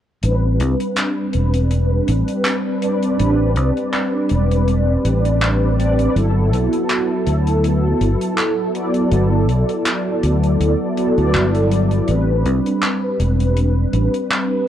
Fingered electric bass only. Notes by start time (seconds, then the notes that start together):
0.23 A1
0.60 C2
1.35 E1
2.09 A1
3.20 A1
3.57 C2
4.31 E1
5.05 A1
6.16 G1
6.53 B1
7.27 D2
8.01 G1
9.12 G1
9.49 B1
10.23 D2
10.60 D2
11.18 D2
11.34 G1
12.09 A1
12.46 C2
13.20 E1
13.93 A1